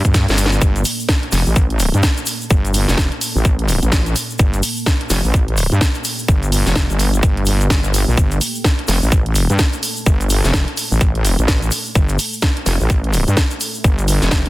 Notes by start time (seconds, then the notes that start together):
Already playing: A#3 A4 D5
0.04 G2, kick, closed hi-hat, shaker
0.14 kick, snare, closed hi-hat, shaker
0.28 G1, snare, closed hi-hat, shaker
0.38 open hi-hat, shaker
0.46 snare
0.52 closed hi-hat, shaker
0.61 G1 A5, kick, closed hi-hat, shaker
0.76 closed hi-hat, shaker
0.85 open hi-hat, shaker
1.00 shaker
1.09 kick, snare, closed hi-hat, shaker
1.23 closed hi-hat
1.32 F1, snare, open hi-hat, shaker
1.46 A1, shaker
1.56 kick, closed hi-hat, shaker
1.70 closed hi-hat
1.79 open hi-hat, shaker
1.94 G2, closed hi-hat, shaker
2.03 kick, snare, closed hi-hat, shaker
2.17 closed hi-hat, shaker
2.26 open hi-hat, shaker
2.41 shaker
2.50 G1, kick, closed hi-hat, shaker
2.65 closed hi-hat, shaker
2.74 open hi-hat, shaker
2.88 F1, snare, shaker
2.97 kick, snare, closed hi-hat, shaker
3.12 closed hi-hat
3.21 open hi-hat, shaker
3.35 A1, shaker
3.45 kick, closed hi-hat, shaker
3.59 closed hi-hat
3.68 open hi-hat, shaker
3.82 A1, closed hi-hat, shaker
3.92 kick, snare, closed hi-hat, shaker
4.06 closed hi-hat, shaker
4.16 open hi-hat, shaker
4.30 shaker
4.39 G1 G5, kick, closed hi-hat, shaker
4.54 closed hi-hat, shaker
4.63 open hi-hat, shaker
4.76 shaker
4.86 kick, snare, closed hi-hat, shaker
5.01 closed hi-hat
5.10 F1, snare, open hi-hat, shaker
5.24 A1, shaker
5.34 kick, closed hi-hat, shaker
5.48 closed hi-hat
5.57 open hi-hat, shaker
5.72 G2, closed hi-hat, shaker
5.81 kick, snare, closed hi-hat, shaker
5.94 closed hi-hat, shaker
6.04 open hi-hat, shaker
6.19 shaker
6.28 G1, kick, closed hi-hat, shaker
6.43 closed hi-hat, shaker
6.52 open hi-hat, shaker
6.66 F1, snare, shaker
6.76 kick, snare, closed hi-hat, shaker
6.90 G1, closed hi-hat, shaker
6.99 open hi-hat, shaker
7.14 closed hi-hat, shaker
7.23 G1, kick, closed hi-hat, shaker
7.37 closed hi-hat
7.46 open hi-hat, shaker
7.60 closed hi-hat, shaker
7.70 G1, kick, snare, closed hi-hat, shaker
7.84 closed hi-hat, shaker
7.94 open hi-hat, shaker
8.08 A#1, shaker
8.17 G1 A5, kick, closed hi-hat, shaker
8.31 closed hi-hat, shaker
8.41 open hi-hat, shaker
8.55 shaker
8.64 kick, snare, closed hi-hat, shaker
8.79 closed hi-hat
8.88 F1, snare, open hi-hat, shaker
9.02 A1, shaker
9.12 kick, closed hi-hat, shaker
9.26 closed hi-hat
9.35 open hi-hat, shaker
9.50 G2, closed hi-hat, shaker
9.59 kick, snare, closed hi-hat, shaker
9.73 closed hi-hat, shaker
9.83 open hi-hat, shaker
9.96 shaker
10.06 G1, kick, closed hi-hat, shaker
10.21 closed hi-hat, shaker
10.30 open hi-hat, shaker
10.44 F1, snare, shaker
10.53 kick, snare, closed hi-hat, shaker
10.68 closed hi-hat
10.77 open hi-hat, shaker
10.91 A1, shaker
11.01 kick, closed hi-hat, shaker
11.15 closed hi-hat
11.25 open hi-hat, shaker
11.39 A1, closed hi-hat, shaker
11.48 kick, snare, closed hi-hat, shaker
11.62 closed hi-hat, shaker
11.71 open hi-hat, shaker
11.86 shaker
11.95 G1 E5, kick, closed hi-hat, shaker
12.09 closed hi-hat, shaker
12.19 open hi-hat, shaker
12.33 shaker
12.42 kick, snare, closed hi-hat, shaker
12.57 closed hi-hat
12.66 F1, snare, open hi-hat, shaker
12.80 A1, shaker
12.90 kick, closed hi-hat, shaker
13.04 closed hi-hat
13.13 open hi-hat, shaker
13.28 G2, closed hi-hat, shaker
13.37 kick, snare, closed hi-hat, shaker
13.51 closed hi-hat, shaker
13.61 open hi-hat, shaker
13.75 shaker
13.84 G1, kick, closed hi-hat, shaker
13.99 closed hi-hat, shaker
14.08 open hi-hat, shaker
14.22 F1, snare, closed hi-hat, shaker
14.31 kick, snare, closed hi-hat, shaker
14.46 G1, closed hi-hat